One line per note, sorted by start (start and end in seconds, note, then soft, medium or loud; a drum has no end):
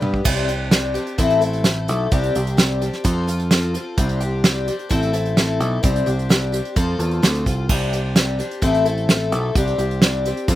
0.01 0.20 G2 medium
0.01 0.24 G3 soft
0.01 0.26 B3 medium
0.01 0.25 D4 medium
0.01 0.25 G4 medium
0.01 high tom medium
0.14 kick medium
0.24 0.96 C2 loud
0.24 0.48 C3 medium
0.24 0.49 G3 medium
0.24 0.49 C4 medium
0.24 0.48 D4 medium
0.24 0.47 G4 medium
0.24 kick loud
0.24 crash loud
0.37 closed hi-hat soft
0.48 0.71 C4 medium
0.48 0.72 D4 medium
0.48 0.72 G4 medium
0.48 closed hi-hat medium
0.71 0.95 G3 medium
0.71 0.95 C4 medium
0.71 0.94 D4 medium
0.71 0.93 G4 medium
0.71 snare loud
0.71 closed hi-hat loud
0.94 1.18 C4 medium
0.94 1.18 D4 medium
0.94 1.18 G4 medium
0.94 closed hi-hat medium
1.06 closed hi-hat soft
1.18 1.89 A1 medium
1.18 1.42 A2 medium
1.18 1.42 E3 medium
1.18 1.42 A3 medium
1.18 1.42 C4 medium
1.18 1.40 E4 loud
1.18 1.40 A4 medium
1.18 kick loud
1.18 closed hi-hat loud
1.30 closed hi-hat soft
1.41 1.63 A3 soft
1.41 1.64 C4 medium
1.41 1.64 E4 medium
1.41 1.65 A4 medium
1.41 closed hi-hat medium
1.53 closed hi-hat soft
1.64 1.88 A3 medium
1.64 1.88 C4 medium
1.64 1.88 E4 medium
1.64 1.87 A4 medium
1.64 snare loud
1.64 closed hi-hat loud
1.88 2.06 B1 loud
1.88 2.12 A3 soft
1.88 2.11 C4 soft
1.88 2.12 E4 medium
1.88 2.12 A4 medium
1.88 closed hi-hat medium
2.11 2.30 C2 loud
2.11 2.35 C3 medium
2.11 2.35 G3 medium
2.11 2.35 C4 medium
2.11 2.35 D4 medium
2.11 2.35 G4 medium
2.11 kick loud
2.11 closed hi-hat loud
2.23 closed hi-hat medium
2.35 2.89 C2 medium
2.35 2.57 C4 medium
2.35 2.58 D4 medium
2.35 2.58 G4 medium
2.35 closed hi-hat medium
2.47 closed hi-hat medium
2.57 2.81 G3 medium
2.57 2.81 C4 medium
2.57 2.81 D4 medium
2.57 2.80 G4 medium
2.57 snare loud
2.57 closed hi-hat loud
2.82 3.03 C4 medium
2.82 3.04 D4 medium
2.82 3.05 G4 medium
2.82 closed hi-hat medium
2.93 snare soft
2.93 closed hi-hat soft
3.04 3.76 F2 medium
3.04 3.28 F3 medium
3.04 3.28 C4 medium
3.04 3.28 F4 loud
3.04 3.26 A4 loud
3.04 kick loud
3.04 closed hi-hat loud
3.27 3.50 C4 soft
3.27 3.51 F4 medium
3.27 3.51 A4 medium
3.27 closed hi-hat medium
3.39 closed hi-hat soft
3.51 3.75 F3 medium
3.51 3.75 C4 medium
3.51 3.74 F4 medium
3.51 3.73 A4 medium
3.51 snare loud
3.51 closed hi-hat loud
3.62 closed hi-hat medium
3.74 3.97 C4 soft
3.74 3.98 F4 medium
3.74 3.98 A4 medium
3.74 closed hi-hat medium
3.98 4.69 C2 loud
3.98 4.21 C3 medium
3.98 4.21 G3 medium
3.98 4.21 C4 medium
3.98 4.20 D4 medium
3.98 4.19 G4 medium
3.98 kick loud
3.98 closed hi-hat loud
4.09 closed hi-hat soft
4.20 4.44 C4 medium
4.20 4.45 D4 medium
4.20 4.44 G4 medium
4.20 closed hi-hat medium
4.44 4.67 G3 medium
4.44 4.68 C4 medium
4.44 4.68 D4 medium
4.44 4.67 G4 medium
4.44 snare loud
4.44 closed hi-hat loud
4.68 4.90 C4 medium
4.68 4.90 D4 medium
4.68 4.91 G4 medium
4.68 closed hi-hat medium
4.79 closed hi-hat soft
4.89 5.60 A1 medium
4.89 5.13 A2 medium
4.89 5.14 E3 medium
4.89 5.14 A3 medium
4.89 5.14 C4 loud
4.89 5.13 E4 loud
4.89 5.12 A4 medium
4.89 kick loud
4.89 closed hi-hat loud
5.02 closed hi-hat soft
5.13 5.36 A3 soft
5.13 5.37 C4 soft
5.13 5.37 E4 medium
5.13 5.37 A4 medium
5.13 closed hi-hat medium
5.25 closed hi-hat soft
5.37 5.60 A3 medium
5.37 5.61 C4 medium
5.37 5.60 E4 medium
5.37 5.59 A4 medium
5.37 snare loud
5.37 closed hi-hat medium
5.60 5.78 B1 medium
5.60 5.82 A3 soft
5.60 5.82 C4 soft
5.60 5.83 E4 medium
5.60 5.83 A4 medium
5.60 closed hi-hat medium
5.83 6.01 C2 medium
5.83 6.06 C3 medium
5.83 6.06 G3 medium
5.83 6.07 C4 medium
5.83 6.06 D4 medium
5.83 6.05 G4 medium
5.83 kick loud
5.83 closed hi-hat loud
5.96 closed hi-hat medium
6.06 6.60 C2 medium
6.06 6.29 C4 medium
6.06 6.30 D4 medium
6.06 6.30 G4 medium
6.06 closed hi-hat medium
6.19 closed hi-hat medium
6.29 6.53 G3 medium
6.29 6.53 C4 medium
6.29 6.53 D4 medium
6.29 6.51 G4 medium
6.29 snare loud
6.29 closed hi-hat loud
6.52 6.75 C4 soft
6.52 6.76 D4 medium
6.52 6.76 G4 medium
6.52 closed hi-hat medium
6.65 closed hi-hat soft
6.76 6.94 F2 medium
6.76 7.00 F3 medium
6.76 7.00 C4 medium
6.76 6.99 F4 medium
6.76 6.98 A4 loud
6.76 kick loud
6.76 closed hi-hat loud
6.99 7.20 E2 medium
6.99 7.22 C4 medium
6.99 7.23 F4 medium
6.99 7.23 A4 medium
6.99 closed hi-hat medium
7.11 closed hi-hat soft
7.22 7.44 D2 medium
7.22 7.46 F3 medium
7.22 7.46 C4 medium
7.22 7.46 F4 medium
7.22 7.45 A4 medium
7.22 snare loud
7.22 closed hi-hat loud
7.35 closed hi-hat medium
7.46 7.67 C2 medium
7.46 7.69 C4 soft
7.46 7.70 F4 medium
7.46 7.69 A4 medium
7.46 kick medium
7.46 closed hi-hat medium
7.69 8.40 C2 loud
7.69 7.93 C3 medium
7.69 7.93 G3 medium
7.69 7.93 C4 medium
7.69 7.93 D4 medium
7.69 7.92 G4 medium
7.69 kick loud
7.69 crash loud
7.81 closed hi-hat soft
7.93 8.16 C4 medium
7.93 8.16 D4 medium
7.93 8.16 G4 medium
7.93 closed hi-hat medium
8.16 8.39 G3 medium
8.16 8.39 C4 medium
8.16 8.39 D4 medium
8.16 8.38 G4 medium
8.16 snare loud
8.16 closed hi-hat loud
8.39 8.62 C4 soft
8.39 8.62 D4 medium
8.39 8.62 G4 medium
8.39 closed hi-hat medium
8.51 closed hi-hat soft
8.62 9.32 A1 medium
8.62 8.85 A2 medium
8.62 8.85 E3 medium
8.62 8.86 A3 medium
8.62 8.86 C4 medium
8.62 8.85 E4 medium
8.62 8.84 A4 loud
8.62 kick loud
8.62 closed hi-hat medium
8.74 closed hi-hat soft
8.85 9.08 A3 medium
8.85 9.08 C4 medium
8.85 9.09 E4 medium
8.85 9.09 A4 medium
8.85 closed hi-hat medium
8.97 closed hi-hat soft
9.09 9.32 A3 medium
9.09 9.32 C4 medium
9.09 9.32 E4 medium
9.09 9.32 A4 medium
9.09 snare loud
9.09 closed hi-hat medium
9.32 9.50 B1 loud
9.32 9.56 A3 medium
9.32 9.55 C4 medium
9.32 9.56 E4 medium
9.32 9.56 A4 medium
9.32 closed hi-hat medium
9.55 9.73 C2 loud
9.55 9.79 C3 medium
9.55 9.79 G3 medium
9.55 9.79 C4 medium
9.55 9.78 D4 medium
9.55 9.77 G4 medium
9.55 kick loud
9.55 closed hi-hat loud
9.67 closed hi-hat medium
9.78 10.31 C2 medium
9.78 10.02 C4 medium
9.78 10.02 D4 medium
9.78 10.02 G4 medium
9.78 closed hi-hat medium
9.91 closed hi-hat soft
10.02 10.25 G3 medium
10.02 10.25 C4 medium
10.02 10.26 D4 medium
10.02 10.25 G4 medium
10.02 snare loud
10.02 closed hi-hat loud
10.25 10.48 C4 medium
10.25 10.49 D4 medium
10.25 10.49 G4 medium
10.25 closed hi-hat medium
10.37 closed hi-hat soft
10.48 10.55 F2 medium
10.48 10.55 F3 loud
10.48 10.55 C4 loud
10.48 10.55 F4 medium
10.48 10.55 A4 loud
10.48 kick loud
10.48 closed hi-hat loud